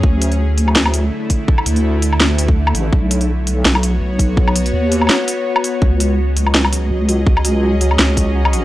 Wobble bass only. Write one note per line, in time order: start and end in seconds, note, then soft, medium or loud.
0.03 0.75 D2 loud
1.66 2.73 D2 loud
2.75 2.91 A1 loud
2.93 3.64 B1 loud
3.65 4.00 B1 loud
4.01 4.72 B1 medium
4.74 5.10 D#2 loud
5.82 6.89 C#2 medium
6.90 7.98 C#2 loud
7.99 8.64 C#2 loud